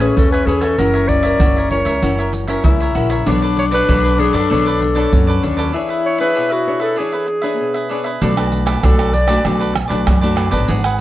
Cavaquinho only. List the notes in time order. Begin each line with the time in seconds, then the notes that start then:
0.00 C#5 E5 G#5
0.32 C#5 E5 G#5
0.47 A4 C#5 E5 G#5
0.62 C#5 E5 G#5
0.79 F#4 A#4 C#5 E5
0.94 A#4 C#5 E5
1.23 A#4 C#5 E5
1.40 F#4 A#4 C#5 E5
1.57 A#4 C#5 E5
1.86 A#4 C#5 E5
2.02 F#4 A#4 C#5 E5
2.19 A#4 C#5 E5
2.33 muted cavaquinho stroke
2.48 A#4 C#5 E5
2.80 A#4 C#5 E5
2.95 F#4 A#4 C#5 E5
3.10 A#4 C#5 E5
3.26 D4 A4 B4 D5
3.42 A4 B4 D5
3.71 A4 B4 D5
3.89 D4 A4 B4 D5
4.04 A4 B4 D5
4.33 A4 B4 D5
4.50 D4 A4 B4 D5
4.66 A4 B4 D5
4.81 muted cavaquinho stroke
4.95 A4 B4 D5
5.27 A4 B4 D5
5.42 D4 A4 B4 D5
5.57 A4 B4 D5
5.73 D4 G#4 B4 E5
5.89 G#4 B4 E5
6.18 G#4 B4 E5
6.35 D4 G#4 B4 E5
6.50 G#4 B4 E5
6.80 G#4 B4 E5
6.96 D4 G#4 B4 E5
7.12 G#4 B4 E5
7.27 muted cavaquinho stroke
7.42 G#4 B4 E5
7.74 G#4 B4 E5
7.89 D4 G#4 B4 E5
8.04 G#4 B4 E5
8.21 D4 A4 B4 D5
8.37 A4 B4 D5
8.66 A4 B4 D5
8.83 D4 A4 B4 D5
8.99 A4 B4 D5
9.27 A4 B4 D5
9.43 D4 A4 B4 D5
9.59 A4 B4 D5
9.74 muted cavaquinho stroke
9.88 A4 B4 D5
10.21 A4 B4 D5
10.36 D4 A4 B4 D5
10.51 A4 B4 D5
10.68 D4 G#4 B4 F#5
10.84 G#4 B4 F#5